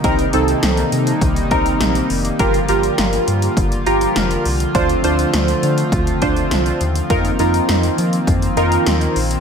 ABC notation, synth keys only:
X:1
M:4/4
L:1/8
Q:1/4=102
K:Fmix
V:1 name="Synth keys"
[CEB] [CEA]3 z [CEB]2 z | [FGB] [FGB]3 z [FGB]2 z | [DFc] [DFc]3 z [DFc]2 z | [EFB] [EFB]3 z [EFB]2 z |]